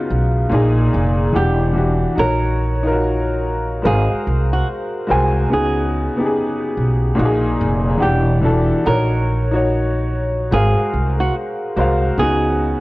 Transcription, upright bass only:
0.11 0.45 B1 medium
0.52 0.86 A#1 loud
0.94 1.28 F1 medium
1.36 2.04 E1 loud
2.18 3.81 A#1 loud
3.85 4.05 G#1 loud
4.10 muted upright bass stroke soft
4.27 4.61 C2 medium
5.10 5.44 C2 medium
5.52 6.07 C#2 medium
6.77 7.11 B1 medium
7.19 7.53 A#1 loud
7.61 7.95 F1 medium
8.03 8.71 E1 loud
8.86 10.48 A#1 loud
10.52 10.72 G#1 loud
10.77 muted upright bass stroke medium
10.93 11.28 C2 medium
11.77 12.11 C2 medium
12.18 12.73 C#2 medium

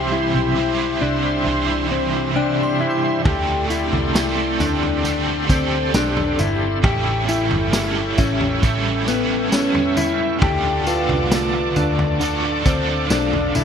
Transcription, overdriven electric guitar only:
0.00 0.56 C3 medium
0.00 0.56 E3 medium
0.00 0.54 G3 medium
0.00 0.57 C4 medium
0.00 0.58 E4 medium
0.00 0.60 C5 loud
0.55 1.47 G3 medium
0.55 1.49 C4 medium
0.55 1.47 E4 medium
0.60 1.52 C5 medium
1.44 3.24 C3 medium
1.44 3.24 E3 medium
1.44 3.25 G3 medium
1.49 3.26 C4 medium
1.49 3.27 E4 medium
1.49 3.28 C5 medium
3.24 4.14 D3 medium
3.24 4.13 A3 medium
3.24 4.14 C4 medium
3.24 4.16 G4 medium
3.24 4.18 A4 medium
4.13 5.04 A3 medium
4.13 5.04 C4 medium
4.13 5.06 G4 medium
4.19 5.07 A4 medium
5.03 5.49 D3 medium
5.03 5.49 A3 medium
5.03 5.50 C4 medium
5.03 5.49 G4 medium
5.07 5.46 A4 medium
5.47 6.85 G4 medium
5.47 6.86 A4 medium
5.53 6.84 C4 soft
6.82 7.73 A2 medium
6.82 7.73 E3 medium
6.82 7.70 G3 loud
6.82 7.73 C#4 medium
6.82 7.74 E4 medium
6.86 7.77 A4 loud
7.72 8.62 G3 medium
7.72 8.63 C#4 medium
7.72 8.63 E4 medium
7.77 8.65 A4 medium
8.61 9.07 A2 medium
8.61 9.07 E3 medium
8.61 9.08 G3 medium
8.61 9.08 C#4 medium
8.61 9.07 E4 medium
8.61 9.04 A4 medium
9.06 10.42 E4 medium
9.06 10.47 A4 medium
9.10 10.41 G3 soft
9.10 10.43 C#4 medium
10.39 12.18 D3 medium
10.39 12.20 A3 medium
10.44 12.21 D4 medium
10.44 12.21 F4 loud
10.44 12.22 A4 medium
12.19 12.65 D3 medium
12.19 12.66 A3 medium
12.19 12.66 D4 medium
12.19 12.66 F4 medium
12.23 12.63 A4 medium
12.64 13.64 F4 soft
12.64 13.64 A4 medium
12.69 13.64 D4 soft

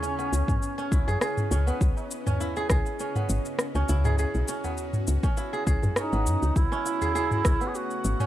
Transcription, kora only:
0.00 0.18 B3 medium
0.00 0.78 C#4 medium
0.00 0.91 E4 medium
0.00 1.07 G#4 loud
0.19 1.67 B3 medium
0.78 1.51 C#4 loud
0.92 2.40 E4 medium
1.08 1.21 G#4 loud
1.21 2.56 G#4 loud
1.51 2.26 C#4 medium
1.67 3.16 B3 medium
2.27 3.00 C#4 medium
2.41 3.89 E4 medium
2.57 2.70 G#4 loud
2.70 4.05 G#4 loud
3.00 3.75 C#4 medium
3.16 4.64 B3 medium
3.75 4.48 C#4 loud
3.89 5.37 E4 medium
4.05 4.18 G#4 loud
4.19 5.53 G#4 medium
4.49 5.23 C#4 medium
4.64 6.12 B3 medium
5.24 5.96 C#4 loud
5.37 6.85 E4 medium
5.53 5.66 G#4 loud
5.67 7.01 G#4 loud
5.97 6.71 C#4 medium
6.13 7.61 B3 medium
6.72 7.44 C#4 loud
6.86 8.26 E4 medium
7.02 7.15 G#4 loud
7.15 8.26 G#4 loud
7.45 8.20 C#4 medium
7.61 8.26 B3 medium
8.20 8.26 C#4 loud

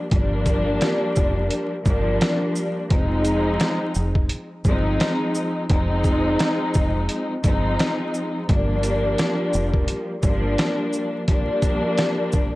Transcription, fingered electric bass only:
0.12 0.78 G1 loud
1.17 1.49 F1 medium
1.86 2.18 G1 medium
2.91 3.57 F1 loud
3.96 4.28 F1 loud
4.65 4.97 G1 loud
5.70 6.36 F1 loud
6.76 7.07 F1 medium
7.44 7.77 G1 medium
8.49 9.15 G1 loud
9.54 9.86 F1 medium
10.23 10.56 G1 loud

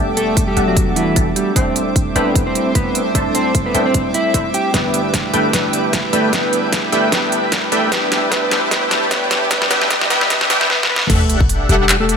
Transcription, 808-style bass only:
0.00 0.55 E1 medium
0.57 1.15 E1 loud
1.16 1.24 E1 medium
1.56 2.14 D1 medium
2.16 3.13 D1 loud
3.15 3.73 D1 loud
3.75 4.32 D1 medium
4.34 4.42 D1 loud
4.74 5.32 G1 medium
5.34 5.52 G1 medium
5.53 6.11 G1 loud
6.13 6.31 G1 loud
6.33 6.91 G1 medium
6.93 7.11 G1 loud
7.12 7.70 G1 loud
7.72 7.90 A1 loud
7.92 8.30 A1 loud
8.32 8.70 A1 loud
8.71 9.09 A1 loud
9.11 9.49 A1 medium
9.51 9.69 A1 loud
9.71 9.89 A1 loud
9.91 10.09 A1 medium
10.10 10.29 A1 loud
10.30 10.48 A1 loud
10.50 10.68 A1 loud
11.10 11.68 E1 medium
11.69 12.17 E1 loud

